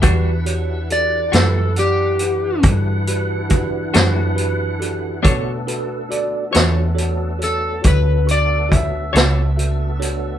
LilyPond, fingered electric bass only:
\new Staff \with { instrumentName = "Fingered electric bass" } { \clef bass \time 12/8 \key b \minor \tempo 4. = 46 e,4. fis,4. g,4. fis,4. | b,4. e,4. d,4. cis,4. | }